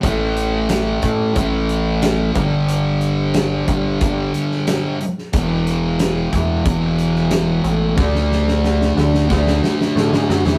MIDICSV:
0, 0, Header, 1, 4, 480
1, 0, Start_track
1, 0, Tempo, 662252
1, 23, Time_signature, 4, 2, 24, 8
1, 7669, End_track
2, 0, Start_track
2, 0, Title_t, "Distorted electric guitar"
2, 0, Program_c, 0, 30
2, 12, Note_on_c, 0, 45, 80
2, 21, Note_on_c, 0, 52, 82
2, 33, Note_on_c, 0, 57, 98
2, 961, Note_off_c, 0, 45, 0
2, 969, Note_on_c, 0, 45, 70
2, 971, Note_off_c, 0, 52, 0
2, 980, Note_on_c, 0, 52, 78
2, 985, Note_off_c, 0, 57, 0
2, 988, Note_on_c, 0, 57, 78
2, 1685, Note_off_c, 0, 45, 0
2, 1690, Note_off_c, 0, 52, 0
2, 1694, Note_off_c, 0, 57, 0
2, 1698, Note_on_c, 0, 43, 84
2, 1709, Note_on_c, 0, 50, 93
2, 1718, Note_on_c, 0, 55, 96
2, 2650, Note_off_c, 0, 43, 0
2, 2656, Note_off_c, 0, 50, 0
2, 2658, Note_off_c, 0, 55, 0
2, 2667, Note_on_c, 0, 55, 80
2, 2676, Note_on_c, 0, 50, 75
2, 2686, Note_on_c, 0, 43, 74
2, 3614, Note_off_c, 0, 55, 0
2, 3619, Note_off_c, 0, 50, 0
2, 3624, Note_off_c, 0, 43, 0
2, 3862, Note_on_c, 0, 40, 90
2, 3876, Note_on_c, 0, 47, 79
2, 3888, Note_on_c, 0, 52, 101
2, 4809, Note_off_c, 0, 40, 0
2, 4818, Note_off_c, 0, 47, 0
2, 4818, Note_on_c, 0, 40, 67
2, 4827, Note_on_c, 0, 47, 77
2, 4834, Note_off_c, 0, 52, 0
2, 4837, Note_on_c, 0, 52, 79
2, 5767, Note_off_c, 0, 47, 0
2, 5768, Note_off_c, 0, 40, 0
2, 5770, Note_on_c, 0, 50, 86
2, 5779, Note_off_c, 0, 52, 0
2, 5782, Note_on_c, 0, 57, 86
2, 5796, Note_on_c, 0, 62, 90
2, 6721, Note_off_c, 0, 50, 0
2, 6729, Note_off_c, 0, 57, 0
2, 6729, Note_on_c, 0, 50, 75
2, 6736, Note_off_c, 0, 62, 0
2, 6742, Note_on_c, 0, 57, 80
2, 6749, Note_on_c, 0, 62, 87
2, 7669, Note_off_c, 0, 50, 0
2, 7669, Note_off_c, 0, 57, 0
2, 7669, Note_off_c, 0, 62, 0
2, 7669, End_track
3, 0, Start_track
3, 0, Title_t, "Analog synth bass"
3, 0, Program_c, 1, 38
3, 22, Note_on_c, 1, 33, 104
3, 716, Note_off_c, 1, 33, 0
3, 745, Note_on_c, 1, 45, 99
3, 973, Note_off_c, 1, 45, 0
3, 984, Note_on_c, 1, 33, 109
3, 1678, Note_off_c, 1, 33, 0
3, 1707, Note_on_c, 1, 31, 102
3, 2640, Note_off_c, 1, 31, 0
3, 2668, Note_on_c, 1, 31, 95
3, 2896, Note_off_c, 1, 31, 0
3, 2910, Note_on_c, 1, 31, 102
3, 3137, Note_off_c, 1, 31, 0
3, 3868, Note_on_c, 1, 28, 104
3, 4560, Note_off_c, 1, 28, 0
3, 4588, Note_on_c, 1, 40, 95
3, 4815, Note_off_c, 1, 40, 0
3, 4825, Note_on_c, 1, 28, 108
3, 5518, Note_off_c, 1, 28, 0
3, 5537, Note_on_c, 1, 33, 106
3, 5769, Note_off_c, 1, 33, 0
3, 5779, Note_on_c, 1, 38, 111
3, 6473, Note_off_c, 1, 38, 0
3, 6502, Note_on_c, 1, 38, 93
3, 6731, Note_off_c, 1, 38, 0
3, 6741, Note_on_c, 1, 38, 96
3, 6970, Note_off_c, 1, 38, 0
3, 7218, Note_on_c, 1, 45, 91
3, 7329, Note_off_c, 1, 45, 0
3, 7340, Note_on_c, 1, 44, 84
3, 7450, Note_off_c, 1, 44, 0
3, 7459, Note_on_c, 1, 42, 98
3, 7569, Note_off_c, 1, 42, 0
3, 7579, Note_on_c, 1, 40, 95
3, 7669, Note_off_c, 1, 40, 0
3, 7669, End_track
4, 0, Start_track
4, 0, Title_t, "Drums"
4, 24, Note_on_c, 9, 36, 111
4, 24, Note_on_c, 9, 42, 102
4, 96, Note_off_c, 9, 36, 0
4, 96, Note_off_c, 9, 42, 0
4, 266, Note_on_c, 9, 42, 62
4, 338, Note_off_c, 9, 42, 0
4, 501, Note_on_c, 9, 42, 95
4, 506, Note_on_c, 9, 38, 106
4, 574, Note_off_c, 9, 42, 0
4, 578, Note_off_c, 9, 38, 0
4, 741, Note_on_c, 9, 42, 70
4, 745, Note_on_c, 9, 36, 86
4, 814, Note_off_c, 9, 42, 0
4, 818, Note_off_c, 9, 36, 0
4, 983, Note_on_c, 9, 42, 94
4, 986, Note_on_c, 9, 36, 108
4, 1056, Note_off_c, 9, 42, 0
4, 1059, Note_off_c, 9, 36, 0
4, 1227, Note_on_c, 9, 42, 69
4, 1299, Note_off_c, 9, 42, 0
4, 1465, Note_on_c, 9, 42, 95
4, 1470, Note_on_c, 9, 38, 111
4, 1538, Note_off_c, 9, 42, 0
4, 1542, Note_off_c, 9, 38, 0
4, 1705, Note_on_c, 9, 42, 57
4, 1707, Note_on_c, 9, 36, 94
4, 1777, Note_off_c, 9, 42, 0
4, 1780, Note_off_c, 9, 36, 0
4, 1946, Note_on_c, 9, 42, 88
4, 2019, Note_off_c, 9, 42, 0
4, 2183, Note_on_c, 9, 42, 57
4, 2255, Note_off_c, 9, 42, 0
4, 2420, Note_on_c, 9, 42, 79
4, 2425, Note_on_c, 9, 38, 106
4, 2493, Note_off_c, 9, 42, 0
4, 2497, Note_off_c, 9, 38, 0
4, 2666, Note_on_c, 9, 42, 67
4, 2667, Note_on_c, 9, 36, 87
4, 2738, Note_off_c, 9, 42, 0
4, 2739, Note_off_c, 9, 36, 0
4, 2906, Note_on_c, 9, 42, 92
4, 2909, Note_on_c, 9, 36, 112
4, 2979, Note_off_c, 9, 42, 0
4, 2981, Note_off_c, 9, 36, 0
4, 3147, Note_on_c, 9, 42, 64
4, 3219, Note_off_c, 9, 42, 0
4, 3272, Note_on_c, 9, 38, 30
4, 3344, Note_off_c, 9, 38, 0
4, 3386, Note_on_c, 9, 42, 85
4, 3390, Note_on_c, 9, 38, 107
4, 3458, Note_off_c, 9, 42, 0
4, 3462, Note_off_c, 9, 38, 0
4, 3629, Note_on_c, 9, 42, 59
4, 3702, Note_off_c, 9, 42, 0
4, 3756, Note_on_c, 9, 38, 29
4, 3829, Note_off_c, 9, 38, 0
4, 3864, Note_on_c, 9, 42, 90
4, 3867, Note_on_c, 9, 36, 120
4, 3936, Note_off_c, 9, 42, 0
4, 3940, Note_off_c, 9, 36, 0
4, 4109, Note_on_c, 9, 42, 64
4, 4182, Note_off_c, 9, 42, 0
4, 4345, Note_on_c, 9, 42, 98
4, 4349, Note_on_c, 9, 38, 100
4, 4417, Note_off_c, 9, 42, 0
4, 4422, Note_off_c, 9, 38, 0
4, 4586, Note_on_c, 9, 36, 88
4, 4587, Note_on_c, 9, 42, 70
4, 4659, Note_off_c, 9, 36, 0
4, 4659, Note_off_c, 9, 42, 0
4, 4824, Note_on_c, 9, 42, 99
4, 4825, Note_on_c, 9, 36, 110
4, 4897, Note_off_c, 9, 36, 0
4, 4897, Note_off_c, 9, 42, 0
4, 5062, Note_on_c, 9, 42, 70
4, 5135, Note_off_c, 9, 42, 0
4, 5187, Note_on_c, 9, 38, 30
4, 5260, Note_off_c, 9, 38, 0
4, 5296, Note_on_c, 9, 42, 96
4, 5301, Note_on_c, 9, 38, 115
4, 5369, Note_off_c, 9, 42, 0
4, 5373, Note_off_c, 9, 38, 0
4, 5540, Note_on_c, 9, 42, 65
4, 5613, Note_off_c, 9, 42, 0
4, 5782, Note_on_c, 9, 36, 107
4, 5784, Note_on_c, 9, 38, 57
4, 5854, Note_off_c, 9, 36, 0
4, 5856, Note_off_c, 9, 38, 0
4, 5907, Note_on_c, 9, 38, 51
4, 5979, Note_off_c, 9, 38, 0
4, 6029, Note_on_c, 9, 38, 59
4, 6102, Note_off_c, 9, 38, 0
4, 6147, Note_on_c, 9, 38, 61
4, 6219, Note_off_c, 9, 38, 0
4, 6266, Note_on_c, 9, 38, 67
4, 6338, Note_off_c, 9, 38, 0
4, 6388, Note_on_c, 9, 38, 65
4, 6460, Note_off_c, 9, 38, 0
4, 6506, Note_on_c, 9, 38, 79
4, 6579, Note_off_c, 9, 38, 0
4, 6628, Note_on_c, 9, 38, 70
4, 6700, Note_off_c, 9, 38, 0
4, 6742, Note_on_c, 9, 36, 104
4, 6746, Note_on_c, 9, 38, 77
4, 6814, Note_off_c, 9, 36, 0
4, 6818, Note_off_c, 9, 38, 0
4, 6866, Note_on_c, 9, 38, 77
4, 6939, Note_off_c, 9, 38, 0
4, 6986, Note_on_c, 9, 38, 89
4, 7058, Note_off_c, 9, 38, 0
4, 7109, Note_on_c, 9, 38, 70
4, 7181, Note_off_c, 9, 38, 0
4, 7228, Note_on_c, 9, 38, 91
4, 7301, Note_off_c, 9, 38, 0
4, 7346, Note_on_c, 9, 38, 84
4, 7418, Note_off_c, 9, 38, 0
4, 7466, Note_on_c, 9, 38, 91
4, 7539, Note_off_c, 9, 38, 0
4, 7586, Note_on_c, 9, 38, 85
4, 7658, Note_off_c, 9, 38, 0
4, 7669, End_track
0, 0, End_of_file